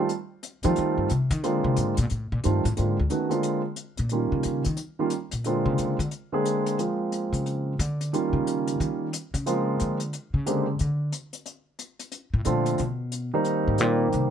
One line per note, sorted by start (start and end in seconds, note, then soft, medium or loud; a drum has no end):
0.09 closed hi-hat soft
0.43 closed hi-hat medium
0.63 1.07 D#3 medium
0.63 0.76 F3 medium
0.63 1.08 G3 medium
0.63 1.08 A3 medium
0.63 1.08 C4 medium
0.63 1.08 F4 medium
0.63 closed hi-hat soft
0.76 0.97 D#3 medium
0.76 closed hi-hat soft
0.98 1.10 G2 medium
1.09 1.30 C3 medium
1.09 closed hi-hat soft
1.30 1.44 D#3 loud
1.30 closed hi-hat soft
1.43 1.94 D3 medium
1.43 1.64 D3 medium
1.43 1.94 G#3 medium
1.43 1.94 A#3 medium
1.43 1.94 C4 medium
1.43 1.94 F4 medium
1.43 closed hi-hat soft
1.64 1.76 C3 loud
1.77 1.97 G#2 medium
1.77 closed hi-hat soft
1.97 2.10 A#2 loud
1.97 closed hi-hat soft
2.10 2.31 A2 medium
2.10 closed hi-hat soft
2.32 2.44 A#2 loud
2.44 2.65 G2 medium
2.44 2.62 D#3 medium
2.44 2.63 G3 soft
2.44 2.63 A3 medium
2.44 2.63 C4 soft
2.44 2.63 F4 medium
2.44 closed hi-hat soft
2.65 2.77 A2 loud
2.65 closed hi-hat soft
2.77 2.98 G#2 medium
2.77 2.96 D3 soft
2.77 2.96 G#3 soft
2.77 2.96 A#3 soft
2.77 2.96 C4 soft
2.77 2.96 F4 soft
2.77 closed hi-hat soft
3.00 3.07 D2 medium
3.10 3.29 D#3 soft
3.10 3.29 A3 soft
3.10 3.30 B3 soft
3.10 3.30 C#4 soft
3.10 3.30 F#4 medium
3.10 closed hi-hat soft
3.29 3.60 D3 medium
3.29 3.60 G#3 soft
3.29 3.60 A#3 soft
3.29 3.60 C4 soft
3.29 3.61 F4 medium
3.29 closed hi-hat soft
3.43 closed hi-hat soft
3.76 closed hi-hat soft
3.97 4.30 A#2 medium
3.97 closed hi-hat soft
4.09 4.62 D#3 soft
4.09 4.62 G3 soft
4.09 4.62 A#3 soft
4.09 4.62 C#4 soft
4.09 4.62 F4 soft
4.09 closed hi-hat soft
4.32 4.44 C#3 medium
4.43 4.65 C#3 medium
4.43 closed hi-hat soft
4.64 4.78 D#3 medium
4.64 closed hi-hat soft
4.77 closed hi-hat soft
4.99 5.11 D#3 medium
4.99 5.11 G3 medium
4.99 5.11 A#3 medium
4.99 5.11 C#4 medium
4.99 5.11 F4 medium
5.10 closed hi-hat soft
5.31 5.64 A#2 medium
5.31 closed hi-hat soft
5.44 5.96 D3 medium
5.44 5.96 G#3 soft
5.44 5.96 A#3 soft
5.44 5.96 C4 soft
5.44 5.96 F4 medium
5.44 closed hi-hat soft
5.66 5.78 C#3 medium
5.78 5.99 C#3 medium
5.78 closed hi-hat soft
5.99 6.07 D3 loud
5.99 closed hi-hat soft
6.11 closed hi-hat soft
6.32 6.76 D3 medium
6.32 6.76 G#3 medium
6.32 6.77 A#3 medium
6.32 6.77 C4 medium
6.32 6.77 G#4 medium
6.45 closed hi-hat soft
6.66 closed hi-hat soft
6.79 7.72 F3 soft
6.79 7.72 G#3 soft
6.79 7.72 A#3 soft
6.79 7.72 C4 soft
6.79 7.72 F4 medium
6.79 closed hi-hat soft
7.12 closed hi-hat soft
7.33 7.76 C#3 medium
7.33 closed hi-hat soft
7.46 closed hi-hat soft
7.79 8.11 D3 loud
7.79 closed hi-hat soft
8.01 closed hi-hat soft
8.13 9.05 D#3 medium
8.13 9.06 G3 medium
8.13 9.06 A#3 medium
8.13 9.06 C#4 medium
8.13 9.06 F4 medium
8.13 closed hi-hat soft
8.33 8.76 C#3 medium
8.47 closed hi-hat soft
8.67 closed hi-hat soft
8.80 9.11 D#3 loud
8.80 closed hi-hat soft
9.13 closed hi-hat medium
9.34 9.77 C#3 medium
9.34 closed hi-hat soft
9.46 9.96 F3 medium
9.46 9.96 G#3 medium
9.46 9.96 A#3 medium
9.46 9.97 C4 medium
9.46 9.97 F4 medium
9.46 closed hi-hat soft
9.80 10.12 D3 medium
9.80 closed hi-hat soft
10.00 closed hi-hat soft
10.13 closed hi-hat soft
10.34 10.77 C#3 medium
10.46 10.65 D3 medium
10.46 10.65 G#3 medium
10.46 10.65 A#3 soft
10.46 10.66 C4 medium
10.46 10.66 G4 medium
10.46 closed hi-hat medium
10.79 11.11 D3 medium
10.79 closed hi-hat soft
11.12 closed hi-hat medium
11.33 closed hi-hat soft
11.46 closed hi-hat soft
11.79 closed hi-hat medium
11.99 closed hi-hat soft
12.12 closed hi-hat soft
12.34 12.46 A2 medium
12.45 12.77 A#2 medium
12.45 12.79 D3 medium
12.45 12.79 F3 medium
12.45 12.79 A3 medium
12.45 12.80 C4 medium
12.45 12.80 F4 medium
12.45 closed hi-hat medium
12.66 closed hi-hat soft
12.78 13.30 B2 medium
12.78 closed hi-hat soft
13.12 closed hi-hat medium
13.34 13.77 D#3 medium
13.34 13.77 G3 medium
13.34 13.77 A#3 medium
13.34 13.78 C4 medium
13.34 13.78 D#4 medium
13.44 closed hi-hat soft
13.68 13.81 G#2 medium
13.78 14.13 A#2 medium
13.78 14.29 D#3 medium
13.78 14.30 G3 medium
13.78 14.30 A#3 medium
13.78 14.30 C4 medium
13.78 14.30 G4 medium
13.78 closed hi-hat medium
14.12 14.30 C3 medium
14.12 closed hi-hat soft